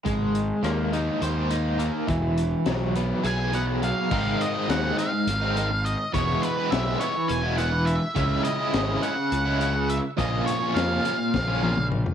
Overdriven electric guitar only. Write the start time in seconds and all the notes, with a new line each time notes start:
0.05 G#3
0.64 A#3
0.93 D#4
1.22 C5
1.51 D#4
1.79 A#3
2.07 E3
2.66 F#3
2.96 B3
3.23 G#4
3.53 B3
3.82 F#3
4.10 G#2 D#3 G#3 C4 D#4
4.54 G#3 C4 D#4
4.68 G#2 D#3 G#3 C4 D#4
4.97 D#3 G#3 C4 D#4
5.12 muted overdriven electric guitar stroke
5.41 G#3 C4 D#4
5.55 D#3 G#3 C4 D#4
5.70 muted overdriven electric guitar stroke
6.14 E3 G#3 B3 E4
6.57 G#3 B3 E4
6.71 E3 G#3 B3 E4
7.00 E3 G#3 B3 E4
7.16 muted overdriven electric guitar stroke
7.43 G#3 B3 E4
7.58 E3 G#3 B3 E4
7.73 muted overdriven electric guitar stroke
8.15 C#3 G#3 C#4 E4
8.59 G#3 C#4 E4
8.73 C#3 G#3 C#4 E4
9.02 C#3 G#3 C#4 E4
9.17 muted overdriven electric guitar stroke
9.46 G#3 C#4 E4
9.59 C#3 G#3 C#4 E4
9.75 muted overdriven electric guitar stroke
10.17 A#2 F3 A#3 C#4 F4
10.60 A#3 C#4 F4
10.75 A#2 F3 A#3 C#4 F4
11.04 F3 A#3 C#4 F4
11.19 muted overdriven electric guitar stroke
11.48 A#3 C#4 F4
11.62 F3 A#3 C#4 F4
11.77 muted overdriven electric guitar stroke